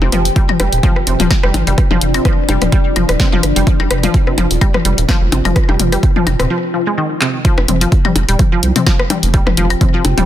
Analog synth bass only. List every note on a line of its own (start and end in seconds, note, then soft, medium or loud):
0.02 0.10 F1 loud
0.12 0.30 F1 medium
0.60 0.69 F1 medium
0.73 0.80 D#1 medium
1.07 1.16 F1 medium
1.20 1.28 D#1 loud
1.44 1.51 F1 medium
1.54 1.64 G1 medium
1.67 1.75 F1 loud
1.91 1.99 F1 loud
2.02 2.19 F1 medium
2.49 2.58 F1 medium
2.62 2.70 D#1 medium
2.96 3.05 F1 medium
3.09 3.17 D#1 loud
3.33 3.40 F1 medium
3.43 3.53 G1 medium
3.56 3.64 F1 loud
3.80 3.88 F1 loud
3.91 4.08 F1 medium
4.38 4.47 F1 medium
4.51 4.59 D#1 medium
4.85 4.95 F1 medium
4.98 5.06 D#1 loud
5.22 5.29 F1 medium
5.32 5.42 G1 medium
5.45 5.53 F1 loud
5.69 5.77 F1 loud
5.80 5.97 F1 medium
6.27 6.36 F1 medium
6.40 6.47 D#1 medium
7.58 7.66 F1 loud
7.68 7.86 F1 medium
8.16 8.25 F1 medium
8.29 8.36 D#1 medium
8.63 8.72 C2 medium
9.23 9.40 F1 loud
9.47 9.55 F1 loud
9.57 9.75 F1 medium
10.05 10.14 F1 medium
10.18 10.25 D#1 medium